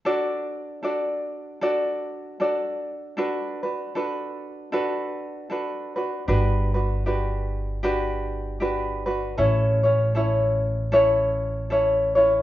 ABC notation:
X:1
M:4/4
L:1/8
Q:"Swing" 1/4=77
K:D
V:1 name="Ukulele"
[DFAd]2 [DFAd]2 [DFAd]2 [DFAd]2 | [DFAB] [DFB] [DFAB]2 [DFAB]2 [DFAB] [DFB] | [DFGB] [DFB] [DFGB]2 [DFGB]2 [DFGB] [DFB] | [CEAc] [CEc] [CEAc]2 [CEAc]2 [CEAc] [CEc] |]
V:2 name="Upright bass" clef=bass
z8 | z8 | G,,,8 | A,,,8 |]